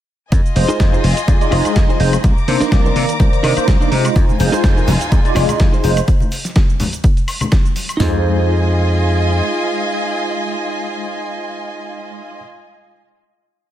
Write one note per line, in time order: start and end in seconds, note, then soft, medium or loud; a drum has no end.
0.32 0.40 F2 loud
0.32 2.22 F4 medium
0.32 2.22 D#5 medium
0.32 2.22 G#5 medium
0.32 kick loud
0.32 closed hi-hat medium
0.32 shaker medium
0.46 shaker soft
0.55 0.64 F1 loud
0.55 0.77 G#3 medium
0.55 0.77 D#4 medium
0.55 0.77 F4 medium
0.55 0.77 C5 loud
0.55 open hi-hat loud
0.68 0.80 D#4 loud
0.68 0.80 F4 loud
0.68 0.80 G#4 loud
0.68 0.80 C5 loud
0.68 closed hi-hat medium
0.68 shaker medium
0.79 0.96 F2 loud
0.79 1.03 G#3 medium
0.79 1.03 D#4 medium
0.79 1.03 F4 medium
0.79 1.03 C5 medium
0.79 kick loud
0.79 snare loud
0.79 closed hi-hat medium
0.79 shaker medium
0.92 1.04 D#4 medium
0.92 1.04 F4 medium
0.92 1.04 G#4 medium
0.92 1.04 C5 medium
0.92 shaker soft
1.04 1.12 F1 loud
1.04 open hi-hat medium
1.17 muted clean electric guitar stroke soft
1.17 closed hi-hat medium
1.17 shaker medium
1.27 1.36 F2 loud
1.27 1.39 G#3 medium
1.27 1.39 D#4 medium
1.27 1.39 F4 medium
1.27 1.39 D5 loud
1.27 kick loud
1.27 closed hi-hat medium
1.27 shaker medium
1.41 1.50 G#3 medium
1.41 1.50 D#4 medium
1.41 1.50 F4 medium
1.41 1.51 D5 loud
1.41 closed hi-hat soft
1.41 shaker soft
1.51 1.60 F1 medium
1.51 1.97 G#3 medium
1.51 1.70 D#4 loud
1.51 1.97 D#4 medium
1.51 1.70 F4 loud
1.51 1.97 F4 medium
1.51 1.71 G#4 loud
1.51 1.71 C5 loud
1.51 1.98 D#5 medium
1.51 open hi-hat loud
1.51 high woodblock medium
1.65 closed hi-hat medium
1.65 high woodblock medium
1.65 shaker medium
1.76 1.84 F2 loud
1.76 kick loud
1.76 snare loud
1.76 closed hi-hat medium
1.76 shaker medium
1.88 2.00 D#4 medium
1.88 2.00 F4 medium
1.88 2.00 G#4 medium
1.88 2.00 C5 loud
1.88 shaker soft
1.99 2.16 F1 medium
1.99 2.15 G#3 medium
1.99 2.15 D#4 medium
1.99 2.15 F4 medium
1.99 2.15 C5 loud
1.99 open hi-hat medium
2.12 muted clean electric guitar stroke soft
2.12 closed hi-hat medium
2.12 high woodblock medium
2.12 shaker medium
2.24 2.32 C2 loud
2.24 4.14 A#5 medium
2.24 4.14 D6 medium
2.24 kick loud
2.24 closed hi-hat medium
2.24 shaker medium
2.38 shaker soft
2.48 2.56 C3 loud
2.48 2.69 A#3 loud
2.48 2.69 D4 medium
2.48 2.69 D#4 medium
2.48 2.69 C5 loud
2.48 open hi-hat loud
2.60 2.72 D4 loud
2.60 2.72 D#4 loud
2.60 2.72 A#4 loud
2.60 2.72 C5 loud
2.60 muted slap bass stroke soft
2.60 snare soft
2.60 closed hi-hat medium
2.60 shaker medium
2.72 2.88 C2 loud
2.72 3.17 D#3 loud
2.72 3.17 A#3 loud
2.72 3.18 D5 loud
2.72 kick loud
2.72 snare loud
2.72 closed hi-hat medium
2.72 shaker medium
2.84 2.96 D4 medium
2.84 2.96 D#4 medium
2.84 2.96 A#4 medium
2.84 2.96 C5 medium
2.84 shaker soft
2.96 3.04 C3 loud
2.96 open hi-hat medium
3.08 muted clean electric guitar stroke soft
3.08 closed hi-hat medium
3.08 shaker medium
3.19 3.28 C2 loud
3.19 3.54 D#3 medium
3.19 3.54 A#3 medium
3.19 3.54 C5 medium
3.19 3.54 D5 medium
3.19 kick loud
3.19 closed hi-hat medium
3.19 shaker medium
3.33 closed hi-hat soft
3.33 shaker soft
3.43 3.52 C3 medium
3.43 3.62 D4 loud
3.43 3.62 D#4 loud
3.43 3.63 A#4 loud
3.43 3.63 D#5 loud
3.43 open hi-hat loud
3.43 high woodblock medium
3.56 3.78 A#3 medium
3.56 3.78 D4 medium
3.56 3.78 D#4 medium
3.56 3.78 C5 medium
3.56 muted slap bass stroke soft
3.56 closed hi-hat medium
3.56 high woodblock medium
3.56 shaker medium
3.68 3.76 C2 loud
3.68 kick loud
3.68 snare loud
3.68 closed hi-hat medium
3.68 shaker medium
3.80 3.89 A#3 medium
3.80 3.92 D4 medium
3.80 3.89 D4 medium
3.80 3.92 D#4 medium
3.80 3.89 D#4 medium
3.80 3.92 A#4 medium
3.80 3.92 C5 loud
3.80 3.89 D5 medium
3.80 shaker soft
3.91 4.08 C3 medium
3.91 4.37 G#3 medium
3.91 4.37 D#4 medium
3.91 4.37 F4 medium
3.91 4.37 C5 medium
3.91 open hi-hat medium
4.04 muted clean electric guitar stroke soft
4.04 closed hi-hat medium
4.04 high woodblock medium
4.04 shaker medium
4.16 4.24 F2 loud
4.16 6.06 D#4 medium
4.16 6.06 F4 medium
4.16 6.06 G#5 medium
4.16 kick loud
4.16 closed hi-hat medium
4.16 shaker soft
4.16 shaker medium
4.29 high conga loud
4.29 shaker soft
4.39 4.48 F1 loud
4.39 4.61 G#3 medium
4.39 4.61 D#4 medium
4.39 4.61 F4 medium
4.39 4.62 C5 loud
4.39 open hi-hat loud
4.39 shaker medium
4.52 4.64 D#4 loud
4.52 4.64 F4 loud
4.52 4.64 G#4 loud
4.52 4.64 C5 loud
4.52 closed hi-hat soft
4.52 shaker medium
4.63 4.80 F2 loud
4.63 4.87 G#3 medium
4.63 4.87 D#4 medium
4.63 4.87 F4 medium
4.63 4.87 C5 loud
4.63 kick loud
4.63 snare loud
4.63 closed hi-hat medium
4.63 shaker soft
4.63 shaker medium
4.76 4.88 D#4 medium
4.76 4.88 F4 medium
4.76 4.88 G#4 medium
4.76 4.88 A#4 medium
4.76 shaker soft
4.87 4.96 F1 loud
4.87 open hi-hat loud
4.87 high conga medium
4.87 low conga medium
4.87 shaker medium
5.00 muted clean electric guitar stroke soft
5.00 closed hi-hat medium
5.00 shaker medium
5.12 5.20 F2 loud
5.12 5.23 G#3 medium
5.12 5.23 D#4 medium
5.12 5.23 F4 medium
5.12 5.23 D5 loud
5.12 kick loud
5.12 closed hi-hat medium
5.12 shaker soft
5.12 shaker medium
5.25 5.34 G#3 medium
5.25 5.34 D#4 medium
5.25 5.34 F4 medium
5.25 5.34 D5 loud
5.25 closed hi-hat soft
5.25 shaker soft
5.35 5.44 F1 medium
5.35 5.81 G#3 medium
5.35 5.54 D#4 loud
5.35 5.81 D#4 medium
5.35 5.54 F4 loud
5.35 5.81 F4 medium
5.35 5.55 G#4 loud
5.35 5.55 D5 loud
5.35 open hi-hat loud
5.35 high woodblock medium
5.35 shaker loud
5.49 muted slap bass stroke soft
5.49 closed hi-hat medium
5.49 high conga medium
5.49 high woodblock medium
5.49 shaker medium
5.60 5.68 F2 loud
5.60 kick loud
5.60 snare loud
5.60 closed hi-hat medium
5.60 shaker soft
5.60 shaker medium
5.72 5.84 D#4 loud
5.72 5.84 F4 medium
5.72 5.84 G#4 medium
5.72 5.84 C5 loud
5.72 shaker soft
5.84 6.00 F1 medium
5.84 5.99 G#3 medium
5.84 5.99 D#4 medium
5.84 5.99 F4 medium
5.84 5.99 C5 loud
5.84 open hi-hat loud
5.84 shaker medium
5.96 muted clean electric guitar stroke soft
5.96 closed hi-hat medium
5.96 high woodblock medium
5.96 shaker medium
6.08 kick loud
6.08 closed hi-hat medium
6.08 shaker soft
6.08 shaker medium
6.20 high conga loud
6.20 shaker soft
6.31 open hi-hat loud
6.31 shaker medium
6.45 snare soft
6.45 closed hi-hat soft
6.45 shaker medium
6.56 kick loud
6.56 snare loud
6.56 closed hi-hat medium
6.56 shaker medium
6.56 shaker soft
6.70 shaker soft
6.80 open hi-hat loud
6.80 high conga medium
6.80 low conga loud
6.80 shaker medium
6.93 closed hi-hat medium
6.93 shaker medium
7.04 kick loud
7.04 closed hi-hat medium
7.04 shaker soft
7.04 shaker medium
7.17 closed hi-hat soft
7.17 shaker soft
7.28 open hi-hat loud
7.28 high woodblock medium
7.28 shaker medium
7.41 closed hi-hat medium
7.41 high conga loud
7.41 high woodblock medium
7.41 shaker medium
7.52 kick loud
7.52 snare loud
7.52 closed hi-hat medium
7.52 shaker medium
7.52 shaker soft
7.66 shaker soft
7.76 open hi-hat loud
7.76 shaker medium
7.89 closed hi-hat medium
7.89 high woodblock medium
7.89 shaker medium
7.97 9.40 F2 loud
7.97 12.38 G#3 medium
7.97 12.37 D#4 medium
7.97 12.39 D#4 medium
7.97 12.40 F4 medium
7.97 12.40 D#5 medium
7.97 12.40 G#5 medium
7.97 snare loud
7.97 floor tom loud
7.97 open hi-hat medium
8.01 12.43 G#4 loud
8.01 12.41 C5 medium